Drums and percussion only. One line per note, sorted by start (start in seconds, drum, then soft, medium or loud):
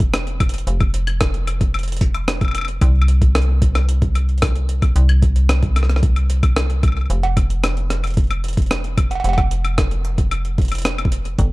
0.00 kick loud
0.00 closed hi-hat medium
0.14 cross-stick loud
0.14 closed hi-hat medium
0.14 high woodblock medium
0.27 closed hi-hat soft
0.40 kick loud
0.40 closed hi-hat medium
0.40 high woodblock medium
0.49 closed hi-hat medium
0.54 closed hi-hat medium
0.58 closed hi-hat medium
0.67 closed hi-hat medium
0.80 kick loud
0.80 closed hi-hat soft
0.80 high woodblock medium
0.94 closed hi-hat medium
1.07 closed hi-hat medium
1.07 high woodblock medium
1.21 kick loud
1.21 cross-stick loud
1.21 closed hi-hat medium
1.34 closed hi-hat soft
1.47 closed hi-hat medium
1.47 high woodblock medium
1.61 kick loud
1.61 closed hi-hat medium
1.74 closed hi-hat soft
1.74 high woodblock medium
1.79 closed hi-hat soft
1.83 closed hi-hat soft
1.88 closed hi-hat medium
1.92 closed hi-hat medium
1.97 closed hi-hat medium
2.01 kick loud
2.01 closed hi-hat medium
2.14 closed hi-hat medium
2.14 high woodblock medium
2.28 cross-stick loud
2.28 closed hi-hat medium
2.41 kick loud
2.41 closed hi-hat soft
2.41 high woodblock soft
2.45 high woodblock soft
2.48 high woodblock soft
2.51 closed hi-hat medium
2.51 high woodblock medium
2.55 high woodblock medium
2.58 high woodblock medium
2.61 high woodblock medium
2.65 closed hi-hat medium
2.65 high woodblock medium
2.81 kick loud
2.81 closed hi-hat medium
2.81 high woodblock medium
3.02 high woodblock medium
3.08 closed hi-hat medium
3.22 kick loud
3.22 closed hi-hat medium
3.35 cross-stick loud
3.35 closed hi-hat medium
3.42 closed hi-hat soft
3.62 kick loud
3.62 closed hi-hat medium
3.75 cross-stick medium
3.75 closed hi-hat medium
3.75 high woodblock medium
3.89 closed hi-hat medium
4.02 kick loud
4.02 closed hi-hat soft
4.15 closed hi-hat medium
4.15 high woodblock soft
4.29 closed hi-hat soft
4.38 closed hi-hat soft
4.42 kick loud
4.42 cross-stick loud
4.42 closed hi-hat medium
4.42 high woodblock medium
4.47 closed hi-hat soft
4.56 closed hi-hat soft
4.69 closed hi-hat medium
4.82 kick loud
4.82 closed hi-hat medium
4.82 high woodblock medium
4.96 closed hi-hat medium
5.09 closed hi-hat soft
5.09 high woodblock medium
5.22 kick loud
5.22 closed hi-hat medium
5.36 closed hi-hat medium
5.49 cross-stick loud
5.49 closed hi-hat medium
5.49 high woodblock medium
5.63 kick loud
5.63 closed hi-hat soft
5.76 cross-stick soft
5.76 closed hi-hat medium
5.76 high woodblock medium
5.83 cross-stick soft
5.89 cross-stick soft
5.89 closed hi-hat medium
5.96 cross-stick medium
6.03 kick loud
6.03 closed hi-hat medium
6.16 closed hi-hat soft
6.16 high woodblock soft
6.30 closed hi-hat medium
6.43 kick loud
6.43 closed hi-hat medium
6.43 high woodblock medium
6.56 cross-stick loud
6.56 closed hi-hat medium
6.70 closed hi-hat soft
6.83 kick loud
6.83 closed hi-hat medium
6.83 high woodblock soft
6.88 high woodblock soft
6.92 high woodblock soft
6.97 high woodblock soft
7.01 high woodblock soft
7.06 high woodblock soft
7.10 closed hi-hat medium
7.23 closed hi-hat soft
7.23 cowbell medium
7.37 kick loud
7.37 closed hi-hat medium
7.37 high woodblock medium
7.50 closed hi-hat medium
7.64 cross-stick loud
7.64 closed hi-hat medium
7.64 high woodblock medium
7.77 closed hi-hat soft
7.90 cross-stick medium
7.90 closed hi-hat medium
8.04 closed hi-hat soft
8.04 high woodblock soft
8.07 closed hi-hat soft
8.11 closed hi-hat soft
8.14 kick loud
8.14 closed hi-hat soft
8.17 closed hi-hat medium
8.24 closed hi-hat soft
8.27 closed hi-hat soft
8.31 closed hi-hat soft
8.31 high woodblock medium
8.44 closed hi-hat medium
8.48 closed hi-hat medium
8.53 closed hi-hat soft
8.57 kick loud
8.57 closed hi-hat soft
8.62 closed hi-hat soft
8.66 closed hi-hat soft
8.71 cross-stick loud
8.71 closed hi-hat medium
8.84 closed hi-hat soft
8.98 kick loud
8.98 closed hi-hat medium
8.98 high woodblock medium
9.11 closed hi-hat soft
9.11 cowbell soft
9.15 cowbell soft
9.20 cowbell medium
9.24 closed hi-hat medium
9.24 cowbell medium
9.29 cowbell medium
9.33 cowbell medium
9.38 kick loud
9.38 closed hi-hat soft
9.38 cowbell loud
9.38 high woodblock medium
9.51 closed hi-hat medium
9.65 closed hi-hat medium
9.65 high woodblock medium
9.78 kick loud
9.78 cross-stick loud
9.78 closed hi-hat medium
9.91 closed hi-hat soft
10.05 closed hi-hat medium
10.18 kick loud
10.18 closed hi-hat medium
10.31 closed hi-hat medium
10.31 high woodblock medium
10.45 closed hi-hat soft
10.58 kick loud
10.58 closed hi-hat soft
10.62 closed hi-hat soft
10.65 closed hi-hat soft
10.68 closed hi-hat soft
10.72 closed hi-hat medium
10.72 high woodblock medium
10.75 closed hi-hat medium
10.78 closed hi-hat medium
10.82 cross-stick loud
10.82 closed hi-hat medium
10.85 closed hi-hat medium
10.98 closed hi-hat soft
10.98 high woodblock medium
11.05 kick loud
11.12 closed hi-hat medium
11.25 closed hi-hat soft
11.39 kick loud
11.39 closed hi-hat medium